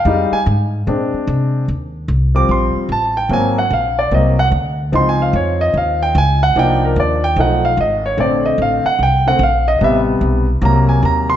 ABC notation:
X:1
M:4/4
L:1/8
Q:"Swing" 1/4=148
K:Eblyd
V:1 name="Grand piano"
f _a z6 | z3 d' c'2 a g | _a _g f d e g z2 | (3c' _a f _d e f g a _g |
g B d g ^f ^e ^d _d | d e f _g =g _g f e | [e=e] z3 b _a b c' |]
V:2 name="Grand piano"
[G,_A,E] z3 [A,CD]4 | z3 [F,G,C]3 z2 | [_G,B,C] z3 [G,B,C] z3 | [F,CE]8 |
[F,B,DE]3 z [^E,A,^D] z3 | [D,A,C]3 z2 [D,A,C] z2 | [C,G,_C]3 z [=C,_G,B,]4 |]
V:3 name="Upright bass" clef=bass
F,, z _A,,2 B,, z C,2 | E,,2 C,,2 B,,, z A,,,2 | _A,,,2 B,,,2 C,,2 D,,2 | _D,,2 F,,2 E,,2 D,,2 |
C,,2 E,,2 =B,,,2 _A,,,2 | B,,,2 A,,, z C,,2 B,,,2 | A,,,2 _C,,2 =C,,2 E,,2 |]